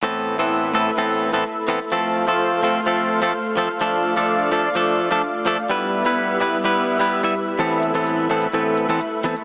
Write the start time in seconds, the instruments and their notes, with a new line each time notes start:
0.03 clean electric guitar A2 E3 B3 C4 A4, analog synth pad A3 E4 B4 E5
0.38 clean electric guitar A2 E3 B3 C4 A4
0.74 clean electric guitar A2 E3 B3 C4 A4
0.97 clean electric guitar A2 E3 B3 C4 A4
1.33 clean electric guitar A2 E3 B3 C4 A4
1.68 clean electric guitar E3 B3 C4 A4
1.92 clean electric guitar F3 A3 C4 A4, analog synth pad F4 C5 F5
2.27 clean electric guitar F3 A3 C4 A4
2.63 clean electric guitar F3 A3 C4 A4
2.86 clean electric guitar F3 A3 C4 A4
3.22 clean electric guitar F3 A3 C4 A4
3.57 clean electric guitar F3 A3 C4 A4
3.81 clean electric guitar F3 A3 D4 A4, analog synth pad D4 F4 D5
4.16 clean electric guitar F3 A3 D4 A4
4.52 clean electric guitar F3 A3 D4 A4
4.75 clean electric guitar F3 A3 D4 A4
5.11 clean electric guitar F3 A3 D4 A4
5.46 clean electric guitar F3 A3 D4 A4
5.70 clean electric guitar G3 B3 E4 B4, analog synth pad G3 B3 E4 B4 E5
6.05 clean electric guitar G3 B3 E4 B4
6.40 clean electric guitar G3 B3 E4 B4
6.64 clean electric guitar G3 B3 E4 B4
6.99 clean electric guitar G3 B3 E4 B4
7.23 clean electric guitar G3 B3 E4 E5
7.59 clean electric guitar A2 E3 B3 C4 A4, analog synth pad A3 B4, closed hi-hat
7.83 closed hi-hat
7.94 clean electric guitar A2 E3 B3 C4 A4, closed hi-hat
8.07 closed hi-hat
8.30 clean electric guitar A2 E3 B3 C4 A4, closed hi-hat
8.42 closed hi-hat
8.53 clean electric guitar A2 E3 B3 C4 A4, closed hi-hat
8.77 closed hi-hat
8.89 clean electric guitar A2 E3 B3 C4 A4, closed hi-hat
9.01 closed hi-hat
9.24 clean electric guitar E3 B3 C4 A4, closed hi-hat
9.36 closed hi-hat